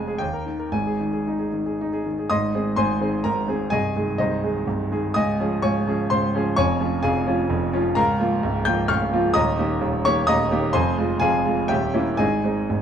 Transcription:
Already playing: F1 F2 G#3 G#4 G#5 C6
0.08 G#4
0.18 D#2 G5
0.33 A#4
0.46 D#3
0.59 A#4
0.72 G#1 G#2 G#5
0.87 G#4
1.00 D#3
1.13 G#4
1.27 D#4
1.39 G#4
1.53 D#3
1.66 G#4
1.81 D#4
1.93 G#4
2.06 D#3
2.19 G#4
2.30 G#1 G#2 D#5 C6 D#6
2.55 D#3 C4 G#4
2.76 G#1 G#2 C5 G#5 C6
3.01 D#3 C4 G#4
3.24 G#1 G#2 A#4 A#5
3.48 D#3 C4 G#4
3.70 C1 C2 G#4 D#5 G#5
3.96 D#3 G#3 G#4
4.18 C1 C2 D#4 C5 D#5
4.43 D#3 G#3 G#4
4.67 C1 C2
4.92 D#3 G#3 G#4
5.14 C#1 C#2 D#5 G#5 D#6
5.40 F3 C#4 G#4
5.62 C#1 C#2 C#5 G#5 C#6
5.87 F3 C#4 G#4
6.10 C#1 C#2 C5 C6
6.35 F3 C#4 G#4
6.56 F1 F2 C#5 G#5 C#6
6.80 F3 C#4 F4
7.03 F1 F2 G#4 F5 G#5
7.27 F3 C#4 F4
7.49 F1 F2
7.73 F3 C#4 F4
7.95 C#1 C#2 A#4 F5 A#5
8.20 F3 A#3 F4
8.43 C#1 C#2
8.65 F3 A#3 F4 G5 G6
8.88 C#1 C#2 F5 C#6 F6
9.12 F3 A#3 F4
9.34 D#1 D#2 D#5 A#5 D#6
9.59 D#3 A#3 G4
9.81 D#1 D#2
10.05 D#3 A#3 G4 C#5 C#6
10.27 D#1 D#2 D#5 A#5 D#6
10.51 D#3 A#3 G4
10.73 F1 F2 C5 G#5 C6
10.98 G#3 F4
11.20 F1 F2 G#4 F5 G#5
11.45 G#3 F4
11.68 D#1 D#2 G4 E5 G5
11.94 A#3 C#4 E4
12.17 G#1 G#2 G#4 D#5 G#5
12.44 G#3 C4 D#4
12.70 G#1 G#2

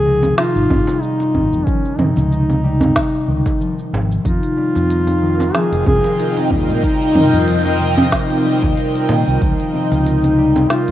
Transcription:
Already playing: C#2 D#3 F3 D#4 G#4
0.06 C3
0.23 djembe tone, cabasa
0.37 D#4 F4, snare, cabasa
0.56 G#1, cabasa
0.70 G#1 G3, kick, djembe tone, djembe bass
0.87 djembe slap, cabasa
1.02 D#4, cabasa
1.20 djembe slap, cabasa
1.35 G#1 D#3, kick, djembe bass
1.52 F2, cabasa
1.66 F3 C#4, kick, cabasa
1.85 cabasa
1.98 C3 D#4, mid tom, djembe tone, djembe bass
2.16 C#2, djembe slap, djembe tone, cabasa
2.32 D#4, cabasa
2.50 djembe tone, cabasa
2.64 G3
2.81 djembe tone, djembe bass, cabasa
2.96 D#4, kick, snare, cabasa
3.14 cabasa
3.28 C#2 D#3
3.46 kick, djembe slap, cabasa
3.60 F3, cabasa
3.79 cabasa
3.93 G#1 C3, djembe slap
4.11 cabasa
4.25 F2 C4 D#4 F4, kick, open hi-hat, cabasa
4.43 open hi-hat, cabasa
4.53 G3 F4
4.58 djembe tone
4.75 F2 A#4, djembe slap, cabasa
4.89 D#4, open hi-hat, cabasa
5.07 D#5, open hi-hat, djembe tone, cabasa
5.22 D#3
5.40 djembe tone, cabasa
5.46 G5
5.54 F3 G#4, snare, open hi-hat, cabasa
5.72 F1, open hi-hat, cabasa
5.86 C2 C3 G#4, kick, djembe tone, djembe bass
6.04 djembe slap, cabasa
6.19 D#4, open hi-hat, cabasa
6.37 open hi-hat, djembe slap, cabasa
6.51 D#2 G3, kick, djembe bass
6.69 A#2, open hi-hat, cabasa
6.82 D#4, kick, open hi-hat, cabasa
7.02 open hi-hat, cabasa
7.15 D#3, mid tom, djembe tone, djembe bass
7.33 F2, djembe tone, cabasa
7.47 F3, open hi-hat, cabasa
7.65 open hi-hat, djembe tone, cabasa
7.80 C3
7.98 djembe tone, djembe bass, cabasa
8.12 D#4, kick, snare, open hi-hat, cabasa
8.30 open hi-hat, cabasa
8.44 G3
8.63 D#2, kick, djembe slap, cabasa
8.77 D#4, open hi-hat, cabasa
8.95 open hi-hat, cabasa
9.09 A#2 D#3, djembe slap
9.27 C2, open hi-hat, cabasa
9.41 C#2 F3 D#4, kick, open hi-hat, cabasa
9.60 open hi-hat, cabasa
9.74 C3, djembe tone
9.92 C#2, djembe slap, cabasa
10.06 D#4, open hi-hat, cabasa
10.24 open hi-hat, djembe tone, cabasa
10.38 G3
10.56 djembe tone, cabasa
10.70 D#4 F4, snare, open hi-hat, cabasa
10.88 open hi-hat

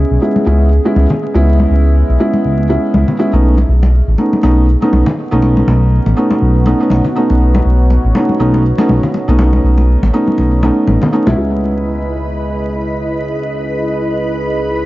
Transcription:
Already playing: G#3 B3 C#4 E4 G#4 D#5
0.11 B1
0.21 G#3 B3 C#4 E4
0.25 E5
0.36 high conga
0.46 C#2 G#3 B3 C#4 E4
0.85 G#3 B3 C#4 E4
0.96 C#2, high conga
1.10 low conga
1.34 C#2 G#3 B3 C#4 E4
1.60 high conga
1.70 C#2
2.09 B1
2.20 G#3 B3 C#4 E4
2.33 high conga
2.45 C#2
2.69 G#3 B3 C#4 E4
2.94 C#2, high conga
3.08 low conga
3.19 G#3 B3 C#4 E4
3.33 B1 A3 B3 C#4 D#4
3.44 B3
3.58 muted conga, high conga
3.69 B1
3.83 F#4, muted conga
4.00 C#5
4.08 A1
4.18 A3 B3 C#4 D#4, muted conga
4.33 high conga
4.43 B1 A3 B3 C#4 D#4, muted conga
4.82 A3 B3 C#4 D#4, muted conga
4.93 B1, high conga
5.06 muted conga, low conga
5.31 B1 A3 B3 C#4 D#4
5.42 muted conga
5.57 high conga
5.67 B1, muted conga
6.06 A1, muted conga
6.16 A3 B3 C#4 D#4
6.31 muted conga, high conga
6.42 B1
6.66 A3 B3 C#4 D#4, muted conga
6.80 A3 B3 C#4 D#4
6.90 B1, muted conga, high conga
7.05 low conga
7.15 A3 B3 C#4 D#4
7.30 B1, muted conga
7.55 muted conga, high conga
7.65 B1
7.90 muted conga
8.04 A1
8.15 A3 B3 C#4 D#4, muted conga
8.29 high conga
8.40 B1 A3 B3 C#4 D#4
8.54 muted conga
8.78 A3 B3 C#4 D#4, muted conga
8.89 B1, high conga
9.03 low conga
9.14 muted conga
9.28 B1 A3 B3 C#4 D#4
9.39 muted conga
9.53 high conga
9.64 B1
9.78 muted conga
10.03 A1, muted conga
10.13 A3 B3 C#4 D#4
10.28 high conga
10.38 B1, muted conga
10.63 A3 B3 C#4 D#4, muted conga
10.88 A1, high conga
11.02 muted conga, low conga
11.12 A3 B3 C#4 D#4
11.26 B1 G#3 B3 C#4 E4, muted conga
11.37 G#3 B3 C#4 E4 G#4 B4 D#5 B5
11.81 G#4
11.86 D#5

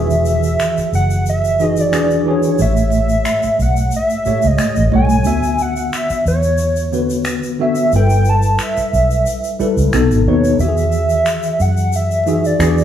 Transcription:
Already playing: E1 D#3 E3 F#4 G#4 E5
0.10 shaker
0.25 shaker
0.43 shaker
0.60 finger snap, shaker
0.77 muted fingered electric bass stroke, shaker
0.93 F#1 F#5, shaker
1.10 shaker
1.26 E5, shaker
1.44 shaker
1.60 E3 D#4 F#4 G#4 D#5, shaker
1.77 D5, shaker
1.92 E1 E3 D4 F#4 G#4, finger snap, shaker
2.10 shaker
2.26 E3 D4 F#4 G#4 C#5
2.43 shaker
2.58 A1 A2 A3 G4 C#5 E5, shaker
2.77 shaker
2.92 shaker
3.09 shaker
3.25 finger snap, shaker
3.43 muted fingered electric bass stroke, shaker
3.59 B1 F#5, shaker
3.76 shaker
3.91 shaker
3.96 E5
4.10 shaker
4.25 A2 A3 G4 C#5, muted fingered electric bass stroke, shaker
4.42 C#2, shaker
4.47 D#5
4.58 finger snap, shaker
4.76 A1, shaker
4.92 B1 A2 G3 A3 C#5 G#5
5.09 shaker
5.24 D2 D3 B3 F#4 E5, shaker
5.43 shaker
5.58 F#5, shaker
5.76 shaker
5.93 E5, finger snap, shaker
6.10 muted fingered electric bass stroke, shaker
6.26 E2 C#5, shaker
6.43 shaker
6.58 shaker
6.76 shaker
6.92 D3 B3 F#4 B4, shaker
7.10 shaker
7.25 finger snap, shaker
7.43 shaker
7.59 D3 B3 F#4 E5
7.75 shaker
7.92 G1 G3 E4 A4 B4 G5, shaker
8.10 shaker
8.25 shaker
8.29 A5
8.42 shaker
8.59 finger snap, shaker
8.63 E5
8.77 muted fingered electric bass stroke, shaker
8.93 B1, shaker
9.11 shaker
9.26 shaker
9.44 shaker
9.59 G3 E4 A4 B4, muted fingered electric bass stroke, shaker
9.77 C#2, shaker
9.93 B1 B2 B3 D#4 A4, finger snap, shaker
10.11 G#1, shaker
10.26 D#2 B2 B3 D#4 B4 C#5
10.44 shaker
10.59 E2 D#3 E3 F#4 G4 E5, shaker
10.68 G#4
10.77 shaker
10.92 shaker
11.09 shaker
11.26 finger snap, shaker
11.43 shaker
11.60 F#2 F#5, shaker
11.77 shaker
11.93 E5, shaker
12.11 shaker
12.26 E3 D#4 F#4 G#4, shaker
12.45 D5, shaker
12.59 E2 E3 D4 F#4 G#4, finger snap, shaker
12.78 shaker

